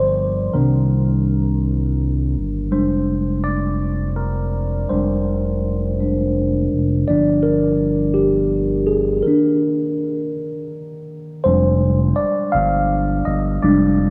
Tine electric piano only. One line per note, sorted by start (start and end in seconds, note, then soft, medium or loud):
0.00 0.54 F3 soft
0.00 0.54 A#3 soft
0.00 0.54 D4 medium
0.00 0.54 A#4 medium
0.00 0.55 C5 medium
0.00 0.54 D5 medium
0.53 1.58 D#3 soft
0.53 1.58 A#3 soft
0.53 1.59 D4 soft
0.53 2.31 A#4 medium
2.71 3.76 G3 soft
2.71 3.76 G#3 soft
2.71 3.77 D4 soft
2.71 3.46 C5 medium
3.44 4.18 D5 medium
4.16 4.91 A#4 medium
4.89 5.99 G3 soft
4.89 5.99 G#3 soft
4.89 5.99 D4 medium
4.89 6.67 C5 medium
6.00 6.32 G3 soft
6.00 6.32 G#3 soft
6.00 6.32 D4 soft
7.08 9.22 F3 soft
7.08 9.22 A#3 soft
7.08 9.23 D4 soft
7.08 7.24 D5 medium
7.43 8.12 A#4 medium
8.14 8.90 G4 medium
8.87 9.03 G#4 medium
9.22 10.30 D#3 soft
9.22 10.65 A#4 medium
9.27 10.31 A#3 soft
9.27 10.31 D4 soft
11.44 12.49 G3 medium
11.44 12.49 G#3 soft
11.44 12.50 D4 medium
11.44 12.12 C5 medium
12.16 12.53 D5 medium
12.52 13.21 F5 medium
13.25 13.59 D#5 medium
13.63 14.10 G3 soft
13.63 14.10 G#3 medium
13.63 14.10 D4 medium
13.63 14.10 D5 medium